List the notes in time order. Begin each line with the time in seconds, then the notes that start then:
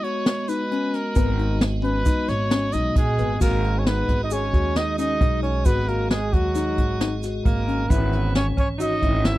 Already playing: G#3 B3 F#4 D#5
0.03 F#4 C#5, closed hi-hat
0.26 snare, closed hi-hat
0.48 D#4 B4, closed hi-hat, shaker
0.71 C#4, closed hi-hat
0.94 A#4, snare, closed hi-hat
1.15 G#1 B3, kick, closed hi-hat, shaker
1.38 D#4, closed hi-hat
1.61 snare, closed hi-hat, shaker
1.82 C#4 B4, closed hi-hat
2.06 D#4, kick, closed hi-hat, shaker
2.28 G#1 C#5, snare, closed hi-hat, shaker
2.51 C#4, snare, closed hi-hat, shaker
2.73 B1 D#4 D#5, closed hi-hat, shaker
2.96 A#1 G#3 G#4, kick, closed hi-hat
3.18 G#1 B3, closed hi-hat, shaker
3.39 G#1 G#3 A#3 F#4 G#4 A#4 D#5, kick, crash, shaker
3.64 closed hi-hat
3.78 C#4 C#5
3.86 B3 D#4 B4, snare, closed hi-hat
4.08 G#1, kick, closed hi-hat
4.24 D#4 D#5
4.30 C#4 G#4 C#5, closed hi-hat, shaker
4.53 D#2 F#4, kick, closed hi-hat
4.76 D#4 D#5, snare, closed hi-hat
4.98 C#4 D#4 D#5, closed hi-hat, shaker
5.21 B1 D#4, kick, closed hi-hat
5.43 C#4 C#5, closed hi-hat
5.65 G#1 B3 F#4 B4, kick, closed hi-hat, shaker
5.88 A#3 F#4 A#4, closed hi-hat
6.10 G#3 G#4, snare, closed hi-hat
6.33 D#2 F#3 F#4, kick, closed hi-hat
6.55 D#4, snare, closed hi-hat, shaker
6.78 G#1, kick, closed hi-hat
7.00 D#4, snare, closed hi-hat
7.23 F#4, snare, closed hi-hat, shaker
7.45 G#1 A#3 A#4, kick, closed hi-hat
7.68 C#4, closed hi-hat
7.88 G#1 E3 B3 C#4 E4 B4 C#5, kick, closed hi-hat, shaker
8.13 closed hi-hat
8.35 C#4 C#5, snare, closed hi-hat
8.57 G#1 C#4 C#5, kick, closed hi-hat
8.78 D#4 F#4 D#5, closed hi-hat, shaker
9.02 G#1 E4, kick, closed hi-hat
9.24 E4 E5, snare, closed hi-hat